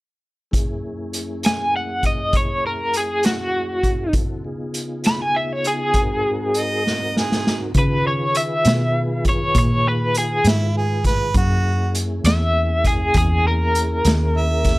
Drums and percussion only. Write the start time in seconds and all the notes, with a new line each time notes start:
0.53 kick, closed hi-hat
1.13 closed hi-hat
1.43 snare, closed hi-hat
2.03 kick, closed hi-hat
2.33 kick, closed hi-hat
2.93 closed hi-hat
3.23 snare, closed hi-hat
3.83 kick, closed hi-hat
4.13 kick, closed hi-hat
4.74 closed hi-hat
5.04 snare, closed hi-hat
5.64 closed hi-hat
5.94 kick, closed hi-hat
6.54 closed hi-hat
6.87 snare
7.17 snare
7.32 snare
7.47 snare
7.74 kick, closed hi-hat
8.35 closed hi-hat
8.65 snare, closed hi-hat
9.25 kick, closed hi-hat
9.55 kick, closed hi-hat
10.15 closed hi-hat
10.44 snare, closed hi-hat
11.04 kick, snare, closed hi-hat
11.34 kick, closed hi-hat
11.95 closed hi-hat
12.25 snare, closed hi-hat
12.85 kick, closed hi-hat
13.14 kick, closed hi-hat
13.75 closed hi-hat
14.05 snare, closed hi-hat
14.64 kick, snare, closed hi-hat